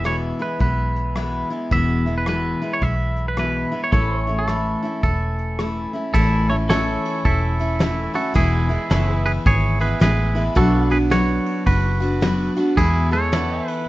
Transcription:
Already playing: fingered electric bass E1, pedal steel guitar G#4 B4 E5
0.04 steel-string acoustic guitar E2 B2 E3 G#3 B3 E4, clean electric guitar C#5, cross-stick, closed hi-hat
0.39 steel-string acoustic guitar E3 G#3 B3 E4, clean electric guitar B4
0.59 fingered electric bass B1, steel-string acoustic guitar E3 G#3 B3 E4, clean electric guitar B4, kick, closed hi-hat
0.96 closed hi-hat
1.15 steel-string acoustic guitar E2 B2 E3 G#3 B3 E4, cross-stick, closed hi-hat
1.50 steel-string acoustic guitar E3 G#3 B3 E4
1.71 fingered electric bass E1, steel-string acoustic guitar E2 B2 E3 G#3 B3 E4, clean electric guitar E5, kick, closed hi-hat
2.06 steel-string acoustic guitar E3 G#3 B3 E4, closed hi-hat
2.18 clean electric guitar B4
2.26 steel-string acoustic guitar E2 B2 E3 G#3 B3 E4, clean electric guitar B4, cross-stick, closed hi-hat
2.62 steel-string acoustic guitar E3 G#3 B3 E4
2.73 clean electric guitar C#5
2.82 fingered electric bass B1, steel-string acoustic guitar E3 G#3 B3 E4, clean electric guitar E5, kick, closed hi-hat
3.17 closed hi-hat
3.28 clean electric guitar B4
3.37 steel-string acoustic guitar E2 B2 E3 G#3 B3 E4, clean electric guitar B4, cross-stick, closed hi-hat
3.72 steel-string acoustic guitar E3 G#3 B3 E4
3.84 clean electric guitar C#5
3.92 fingered electric bass A1, steel-string acoustic guitar A2 E3 A3 C#4 E4, pedal steel guitar A4 B4 E5, clean electric guitar C#5, kick, closed hi-hat
4.18 pedal steel guitar C#5
4.27 steel-string acoustic guitar A3 C#4 E4, closed hi-hat
4.39 clean electric guitar A4
4.48 steel-string acoustic guitar A2 E3 A3 C#4 E4, cross-stick, closed hi-hat
4.83 steel-string acoustic guitar A3 C#4 E4
5.03 fingered electric bass E1, steel-string acoustic guitar E3 A3 C#4 E4, clean electric guitar A4, kick, closed hi-hat
5.38 closed hi-hat
5.59 steel-string acoustic guitar A2 E3 A3 C#4 E4, cross-stick, closed hi-hat
5.93 steel-string acoustic guitar A3 C#4 E4
6.14 fingered electric bass A1, steel-string acoustic guitar A2 E3 A3 C#4 E4, clean electric guitar E4 A4, kick, crash
6.50 steel-string acoustic guitar A3 C#4 E4, clean electric guitar A4 C#5, ride
6.69 steel-string acoustic guitar E3 A3 C#4 E4, pedal steel guitar A4 C#5 E5, clean electric guitar A4 C#5, snare, ride
7.05 ride
7.25 fingered electric bass E1, clean electric guitar E4 A4, kick, ride
7.59 steel-string acoustic guitar A3 C#4 E4, ride
7.79 steel-string acoustic guitar E3 A3 C#4 E4, snare, ride
8.14 steel-string acoustic guitar A3 C#4 E4, clean electric guitar F#4 A4, ride
8.34 fingered electric bass E1, steel-string acoustic guitar E2 B2 E3 G#3 B3 E4, clean electric guitar E4 G#4, kick, ride
8.69 steel-string acoustic guitar E3 G#3 B3 E4, ride
8.90 fingered electric bass F#1, steel-string acoustic guitar E3 G#3 B3 E4, pedal steel guitar A4 C#5 E5, snare, ride
9.11 pedal steel guitar G#4
9.17 pedal steel guitar B4
9.26 clean electric guitar G#4 B4, ride
9.46 fingered electric bass G#1, clean electric guitar G#4 C#5, kick, ride
9.80 steel-string acoustic guitar E3 G#3 B3 E4, clean electric guitar G#4 B4, ride
10.00 fingered electric bass A1, steel-string acoustic guitar E3 G#3 B3 E4, clean electric guitar G#4 B4, snare, ride
10.35 steel-string acoustic guitar E3 G#3 B3 E4, ride
10.55 fingered electric bass B1, steel-string acoustic guitar B2 F#3 B3 D4 F#4, pedal steel guitar D4 B4 E5, clean electric guitar F#4 A4, kick, ride
10.84 pedal steel guitar F#5
10.90 steel-string acoustic guitar B3 D4 F#4, clean electric guitar G#4 B4, ride
11.10 steel-string acoustic guitar F#3 B3 D4 F#4, clean electric guitar F#4 C#5, snare, ride
11.46 ride
11.66 fingered electric bass F#1, clean electric guitar F#4 B4, kick, ride
12.00 steel-string acoustic guitar B3 D4 F#4, ride
12.21 steel-string acoustic guitar F#3 B3 D4 F#4, snare, ride
12.57 steel-string acoustic guitar B3 D4 F#4, ride
12.77 fingered electric bass E2, steel-string acoustic guitar E2 B2 E3 G#3 B3 G#4, clean electric guitar E4 G#4, kick, ride
13.11 steel-string acoustic guitar E3 G#3 B3 G#4, clean electric guitar A4 C#5, ride
13.32 steel-string acoustic guitar E3 B3, pedal steel guitar B4 D5 F#5, snare, ride
13.59 pedal steel guitar E5 G#5
13.68 clean electric guitar B4, ride

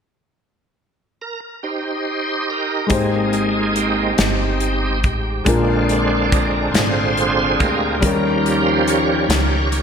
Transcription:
1.22 tonewheel organ A#4
1.63 tonewheel organ D#4 G4 C5
2.50 tonewheel organ A#4
2.87 upright bass G#1, grand piano G#2 G#3 D#4 G4, tonewheel organ G#3 A#3 C4 D#4, kick, closed hi-hat
2.91 tonewheel organ G#4, grand piano C5
3.33 tonewheel organ G#4, closed hi-hat
3.69 tonewheel organ G#4
3.76 tonewheel organ C4 D#4 G4, closed hi-hat
4.18 upright bass G1, snare, closed hi-hat
4.60 closed hi-hat
5.04 upright bass A1, tonewheel organ G4, kick, closed hi-hat
5.44 upright bass A#1, grand piano A#2 G#3 D4 F4, tonewheel organ D3 G#3 C4 D4 F4, kick, closed hi-hat
5.49 grand piano A#4
5.89 closed hi-hat
6.24 tonewheel organ A4
6.31 tonewheel organ A#4, kick, closed hi-hat
6.71 upright bass G#1, tonewheel organ F4 G#4 C5, closed hi-hat
6.75 snare
7.17 closed hi-hat
7.59 upright bass D2, tonewheel organ D3 G#3 A#3 C4 G4 A#4, kick, closed hi-hat
7.99 upright bass D#2, grand piano D#3 G3 C#4, tonewheel organ F3 G3 C#4, kick, closed hi-hat
8.04 grand piano D#4 A#4
8.46 closed hi-hat
8.66 tonewheel organ C5
8.88 tonewheel organ G4 A#4 C#5, closed hi-hat
9.29 upright bass C#2, tonewheel organ F3 G3 C#4, snare, closed hi-hat
9.72 closed hi-hat

